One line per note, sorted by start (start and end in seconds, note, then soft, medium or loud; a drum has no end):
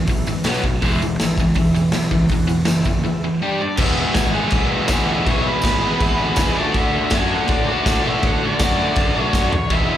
0.07 0.24 B1 medium
0.07 0.25 E2 medium
0.07 0.26 E3 medium
0.07 0.34 G#4 medium
0.07 0.35 B4 medium
0.07 0.35 E5 medium
0.07 kick loud
0.07 open hi-hat medium
0.07 tambourine soft
0.17 tambourine soft
0.26 0.43 G#1 medium
0.26 0.43 E2 medium
0.26 0.44 E3 medium
0.26 tambourine medium
0.38 tambourine soft
0.44 0.78 B1 medium
0.44 0.62 B2 loud
0.44 0.63 F#3 loud
0.44 0.63 B3 loud
0.44 0.72 F#4 medium
0.44 0.72 B4 medium
0.44 snare loud
0.44 open hi-hat medium
0.44 tambourine medium
0.48 0.72 F#5 medium
0.54 tambourine medium
0.64 0.81 B2 medium
0.64 0.81 F#3 medium
0.64 kick medium
0.82 1.15 E1 loud
0.82 0.99 E2 medium
0.82 1.00 E3 medium
0.82 1.00 G#3 medium
0.82 1.09 G#4 medium
0.82 kick medium
0.82 open hi-hat medium
0.86 1.10 B4 medium
0.86 1.11 E5 loud
0.92 tambourine soft
1.02 1.18 E2 medium
1.02 1.18 E3 medium
1.02 tambourine medium
1.19 1.36 G#1 medium
1.19 1.45 G#4 medium
1.19 1.45 B4 medium
1.19 1.45 E5 loud
1.19 snare loud
1.19 open hi-hat medium
1.19 tambourine medium
1.23 1.38 E2 medium
1.23 1.38 E3 medium
1.37 1.54 C#2 medium
1.37 1.54 E2 medium
1.37 1.55 E3 medium
1.37 kick medium
1.37 tambourine medium
1.47 tambourine soft
1.54 1.89 E1 medium
1.54 1.72 E2 medium
1.54 1.73 E3 medium
1.54 1.82 G#4 medium
1.54 1.83 B4 medium
1.54 kick loud
1.54 open hi-hat medium
1.54 tambourine soft
1.59 1.83 E5 medium
1.66 tambourine soft
1.74 1.91 E2 medium
1.74 1.91 E3 medium
1.74 tambourine medium
1.88 2.09 B1 loud
1.88 tambourine soft
1.92 2.11 E2 medium
1.92 2.11 E3 medium
1.92 2.19 G#4 medium
1.92 2.19 B4 medium
1.92 2.19 E5 medium
1.92 snare loud
1.92 open hi-hat medium
1.92 tambourine medium
2.02 tambourine medium
2.11 2.29 C#2 medium
2.11 2.29 E2 medium
2.11 2.29 E3 medium
2.11 kick medium
2.28 2.63 E1 medium
2.28 2.47 E2 medium
2.28 2.46 E3 medium
2.28 2.56 G#4 medium
2.28 2.57 B4 medium
2.28 2.57 F#5 loud
2.28 kick loud
2.28 open hi-hat medium
2.28 tambourine soft
2.39 tambourine soft
2.48 2.65 E2 medium
2.48 2.64 E3 medium
2.48 tambourine medium
2.60 tambourine soft
2.65 3.01 F#1 medium
2.65 2.83 E2 medium
2.65 2.83 E3 medium
2.65 2.93 G#4 medium
2.65 snare loud
2.65 open hi-hat medium
2.65 tambourine loud
2.69 2.94 B4 medium
2.69 2.94 E5 medium
2.77 tambourine soft
2.84 3.03 E2 medium
2.84 3.03 E3 medium
2.84 kick medium
2.84 tambourine medium
2.94 tambourine soft
3.04 3.21 E2 medium
3.04 3.21 E3 medium
3.04 3.30 G#4 medium
3.04 3.30 B4 medium
3.04 3.31 E5 medium
3.24 3.40 E2 medium
3.24 3.40 E3 medium
3.40 3.59 G3 loud
3.40 3.60 D4 loud
3.40 3.66 G4 medium
3.40 3.60 G4 loud
3.40 3.67 D5 medium
3.40 3.67 G5 medium
3.60 3.77 G3 medium
3.60 3.78 D4 medium
3.60 3.79 D5 medium
3.76 4.01 E1 medium
3.76 4.39 E2 medium
3.76 4.33 B2 medium
3.76 4.03 G#4 loud
3.76 4.04 B4 medium
3.76 4.16 E5 loud
3.76 4.05 E5 loud
3.76 kick loud
3.76 crash loud
3.76 crash medium
3.81 4.36 E3 medium
3.81 4.36 G#3 medium
3.81 4.35 B3 loud
3.81 4.34 G#4 medium
4.14 4.38 G#1 medium
4.14 4.28 G#4 medium
4.14 4.29 B4 medium
4.14 4.28 E5 medium
4.14 4.32 G#5 loud
4.14 kick loud
4.14 snare loud
4.14 tambourine loud
4.14 crash medium
4.30 4.45 G#4 medium
4.30 4.46 B4 medium
4.30 4.46 E5 medium
4.34 4.88 B2 medium
4.34 4.90 E3 medium
4.34 4.90 G#3 medium
4.34 4.89 B3 medium
4.34 4.89 G#4 medium
4.34 4.53 F#5 loud
4.39 4.87 E2 medium
4.51 4.75 B1 medium
4.51 4.77 G#4 medium
4.51 4.78 B4 medium
4.51 4.78 D5 medium
4.51 5.08 E5 loud
4.51 kick loud
4.51 crash medium
4.86 5.01 B1 medium
4.86 5.24 E2 medium
4.86 5.25 B2 medium
4.86 5.13 G#4 medium
4.86 5.14 B4 medium
4.86 5.15 F#5 medium
4.86 kick loud
4.86 snare loud
4.86 tambourine loud
4.86 crash medium
4.91 5.26 E3 loud
4.91 5.26 G#3 loud
4.91 5.27 B3 loud
4.91 5.27 G#4 loud
5.06 5.18 D2 medium
5.06 5.28 E5 loud
5.25 5.50 B1 loud
5.25 5.80 E2 medium
5.25 5.81 B2 medium
5.25 5.81 E3 loud
5.25 5.82 G#3 medium
5.25 5.51 G#4 medium
5.25 5.52 B4 medium
5.25 5.46 C#5 loud
5.25 5.52 E5 loud
5.25 kick loud
5.25 crash medium
5.29 5.81 B3 loud
5.29 5.79 G#4 medium
5.46 6.60 B4 loud
5.62 5.86 G#1 medium
5.62 5.76 G#4 medium
5.62 5.77 B4 medium
5.62 5.76 D5 medium
5.62 kick loud
5.62 snare loud
5.62 tambourine loud
5.62 crash medium
5.80 6.37 G#3 medium
5.80 6.37 B3 medium
5.80 5.94 G#4 medium
5.80 6.36 G#4 medium
5.80 5.94 B4 medium
5.80 5.95 E5 medium
5.84 6.36 E2 medium
5.84 6.38 B2 medium
5.84 6.38 E3 medium
6.00 6.12 G#1 medium
6.00 6.26 G#4 loud
6.00 6.27 B4 medium
6.00 6.27 E5 loud
6.00 kick loud
6.00 crash medium
6.17 6.29 D2 medium
6.36 6.49 E1 medium
6.36 6.55 E2 medium
6.36 6.56 B2 loud
6.36 6.55 E3 medium
6.36 6.57 G#4 medium
6.36 kick loud
6.36 snare loud
6.36 tambourine loud
6.36 crash medium
6.41 6.57 G#3 loud
6.41 6.58 B3 medium
6.41 6.58 G#4 medium
6.41 6.58 B4 medium
6.41 6.58 E5 loud
6.56 6.68 D2 loud
6.56 7.12 D3 medium
6.56 7.14 A3 loud
6.56 7.17 D4 loud
6.56 7.01 F#4 medium
6.56 7.02 A4 medium
6.56 6.76 D5 medium
6.56 7.02 D5 loud
6.62 7.18 F#4 loud
6.74 6.97 D2 loud
6.74 7.14 E5 medium
6.74 kick loud
6.74 crash medium
7.10 7.34 F#2 loud
7.10 7.67 D3 medium
7.10 7.25 F#4 medium
7.10 7.25 A4 medium
7.10 7.26 D5 medium
7.10 kick loud
7.10 snare loud
7.10 tambourine loud
7.10 crash medium
7.14 7.68 A3 medium
7.14 7.69 D4 medium
7.14 7.33 G#5 loud
7.19 7.66 F#4 medium
7.29 7.43 F#4 medium
7.29 7.44 A4 medium
7.29 7.44 D5 medium
7.29 7.51 F#5 medium
7.48 7.72 A2 loud
7.48 7.75 F#4 medium
7.48 7.74 A4 medium
7.48 7.75 D5 medium
7.48 kick loud
7.48 crash medium
7.52 8.08 D5 loud
7.68 8.05 D4 medium
7.68 8.04 F#4 medium
7.72 8.02 D3 medium
7.72 8.04 A3 medium
7.86 7.97 A2 medium
7.86 8.12 F#4 medium
7.86 8.13 A4 medium
7.86 8.13 D5 medium
7.86 kick loud
7.86 snare loud
7.86 tambourine loud
7.86 crash medium
8.04 8.16 B2 medium
8.04 8.58 D3 medium
8.04 8.59 A3 loud
8.04 8.26 E5 medium
8.08 8.60 D4 loud
8.08 8.62 F#4 medium
8.22 8.45 A2 loud
8.22 8.50 F#4 loud
8.22 8.43 F#5 loud
8.22 kick loud
8.22 crash medium
8.26 8.50 A4 medium
8.26 8.51 D5 loud
8.46 9.21 D5 medium
8.59 8.83 F#2 medium
8.59 9.14 D3 medium
8.59 9.15 A3 medium
8.59 9.15 D4 medium
8.59 8.73 F#4 medium
8.59 8.74 A4 medium
8.59 kick loud
8.59 snare loud
8.59 tambourine loud
8.59 crash medium
8.63 9.15 F#4 medium
8.63 8.74 D5 medium
8.78 8.91 F#4 medium
8.78 8.92 A4 medium
8.78 8.92 E5 medium
8.95 9.08 F#2 medium
8.95 9.22 F#4 medium
8.95 9.22 A4 medium
8.95 9.23 D5 medium
8.95 kick loud
8.95 crash medium
9.16 9.27 B1 medium
9.16 9.53 A3 medium
9.16 9.53 D4 medium
9.16 9.52 F#4 medium
9.21 9.54 D3 medium
9.21 9.54 C#5 medium
9.33 9.56 F#2 loud
9.33 9.59 F#4 medium
9.33 9.60 A4 medium
9.33 9.59 D5 loud
9.33 kick loud
9.33 snare medium
9.33 tambourine loud
9.53 9.73 C#5 medium
9.53 floor tom loud
9.70 9.93 E1 loud
9.70 9.97 E2 medium
9.70 9.97 B2 medium
9.70 9.97 E3 medium
9.70 9.97 G#3 medium
9.70 9.97 G#4 medium
9.70 9.97 B4 loud
9.70 9.97 E5 loud
9.70 kick loud
9.70 crash medium
9.74 9.97 B3 medium
9.74 9.97 G#4 medium